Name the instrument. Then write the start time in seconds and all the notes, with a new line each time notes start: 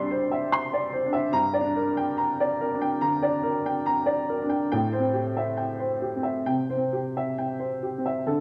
upright piano
Already playing: G3 C5 D5 E5 C6
0.00 D4
0.11 C5
0.31 E5
0.52 C6
0.73 D5
0.92 C5
1.06 D4
1.13 E5
1.32 G2 A#5
1.53 D5
1.61 D4
1.76 A#4
1.97 G5
2.17 A#5
2.40 D5
2.61 A#4
2.74 D4
2.81 G5
3.01 D3 A#5
3.23 D5
3.29 D4
3.43 A#4
3.66 G5
3.86 A#5
4.06 D5
4.29 A#4
4.42 D4
4.49 G5
4.72 A2 G5
4.92 C5
5.00 C4
5.13 G4
5.37 E5
5.57 G5
5.79 C5
6.02 G4
6.16 C4
6.23 E5
6.46 C3 G5
6.70 C5
6.77 C4
6.93 G4
7.17 E5
7.38 G5
7.59 C5
7.83 G4
7.98 C4
8.06 E5
8.26 D3 A4